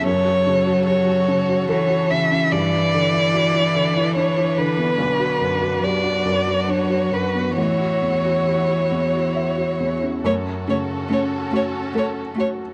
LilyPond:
<<
  \new Staff \with { instrumentName = "Violin" } { \time 3/4 \key fis \phrygian \tempo 4 = 72 cis''4 cis''4 cis''8 e''8 | d''2 cis''8 b'8~ | b'4 d''4 cis''8 b'8 | cis''2~ cis''8. r16 |
cis''8 cis''8 cis''8 cis''8 cis''8 cis''8 | }
  \new Staff \with { instrumentName = "String section" } { \time 3/4 \key fis \phrygian << { <cis a'>2. | <d' b'>2.~ | <d' b'>2. | <e' cis''>2. |
<cis' a'>2. | } \\ { fis'2. | e'2. | fis'2.~ | fis'2. |
fis'2. | } >> }
  \new Staff \with { instrumentName = "Felt piano" } { \time 3/4 \key fis \phrygian fis,16 fis'16 cis16 fis'16 g'16 fis'16 cis16 fis'16 a'16 fis'16 cis16 cis'16 | g,16 e'16 d16 e'16 fis'16 e'16 d16 e'16 d'16 e'16 d16 b16 | b,,16 fis'16 fis,16 fis'16 g'16 fis'16 fis,16 fis'16 d'16 fis'16 fis,16 b16 | a,,16 fis'16 e,16 fis'16 g'16 fis'16 e,16 fis'16 e''16 fis'16 e,16 cis'16 |
fis,8 cis8 cis'8 fis'8 a'8 fis'8 | }
  \new Staff \with { instrumentName = "Cello" } { \time 3/4 \key fis \phrygian fis2 e4~ | e2. | d4 fis2 | e2~ e8. r16 |
a8 a8 a8 a8 a8 a8 | }
>>